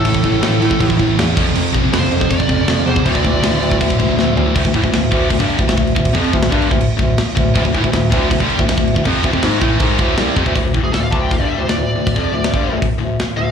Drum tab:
CC |x-x-x-x-x-x-x-x-|x-x-x-x-x-x-x-x-|x-x-x-x-x-x-----|x-x-x-x-x-x-x-x-|
HH |----------------|----------------|----------------|----------------|
SD |----o-------o---|----o-------o---|----o-------o---|----o-------o---|
FT |----------------|----------------|--------------o-|----------------|
BD |ooo----oooo---o-|--o----oooo----o|ooo----oooo-----|oooo--o-oo-o-o-o|

CC |x-x-x-x-x-x-x-x-|x-x-x-x-x-x-x-x-|x-x-x-x-x-x-x-x-|----------------|
HH |----------------|----------------|----------------|o---o---o---o---|
SD |----o-------o---|----o-------o---|----o-------o---|----o-------o---|
FT |----------------|----------------|----------------|----------------|
BD |oo-o-o-o--o---o-|oooo--o-oo-o-o-o|o-oo--o-o-o---oo|o-o---o-o-------|

CC |----------------|
HH |o---o---o---o---|
SD |----o-------o---|
FT |----------------|
BD |oo---o--o-------|